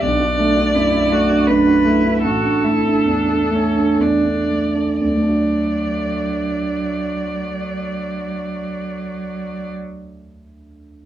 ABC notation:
X:1
M:3/4
L:1/16
Q:1/4=59
K:D
V:1 name="Violin"
d8 B4 | A8 d4 | d12- | d12 |]
V:2 name="Cello"
D4 E2 F2 D2 E2 | F2 E2 D2 C2 D2 z2 | F,12- | F,12 |]
V:3 name="Grand piano"
B,,, [DF] A, [DF] F,, [DF] A, [DF] F,, [DF] A, [DF] | A,,, [DA] A, [DA] E,, [DA] A, [DA] E,, [DA] A, [DA] | [D,,D,A,DFd]12- | [D,,D,A,DFd]12 |]